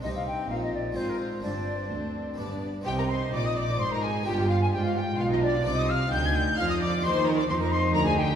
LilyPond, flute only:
\new Staff \with { instrumentName = "Flute" } { \time 3/4 \key c \minor \tempo 4 = 130 ees''16 f''16 g''8 f''16 ees''16 d''8 c''16 bes'16 c''8 | d''2 r4 | g''16 bes''16 c'''8 d'''16 ees'''16 d'''8 c'''16 bes''16 aes''8 | g''8 f''16 aes''16 g''16 f''16 g''8 f''16 ees''16 d''8 |
d'''16 ees'''16 f'''8 g'''16 aes'''16 g'''8 f'''16 ees'''16 d'''8 | c'''8 bes''16 d'''16 c'''16 bes''16 c'''8 bes''16 aes''16 g''8 | }